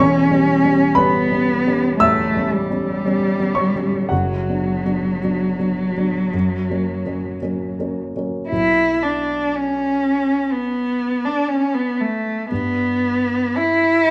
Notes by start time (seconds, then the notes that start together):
Already playing: E1 C#4 C#5 C#6
0.00 E2
0.30 G3 B3 C#4
0.64 G3 B3 C#4
0.95 G3 B3 C#4 B4 B5
1.31 G3 B3 C#4
1.66 G3 B3 C#4
1.99 E2 A3 E5 E6
2.37 G3 B3 C#4
2.53 G3
2.70 G3 B3 C#4
3.05 G3 B3 C#4
3.40 G3 B3 C#4
3.55 C#5 C#6
3.76 G3 B3 C#4
4.09 F#1 F#2 F#3 F#4 F#5
4.49 F#3 B3 D4
4.85 F#3 B3 D4
5.23 F#3 B3 D4
5.59 F#3 B3 D4
5.97 F#3 B3 D4
6.34 F#2
6.70 F#3 A#3 C#4
7.06 F#3 A#3 C#4
7.42 F#3 A#3 C#4
7.79 F#3 A#3 C#4
8.16 F#3 A#3 C#4
8.49 B1 F#3 B3 E4
9.03 D4
9.55 C#4
10.52 B3
11.25 D4
11.48 C#4
11.74 B3
12.01 A3
12.50 G2 G3 B3 D4
13.57 E4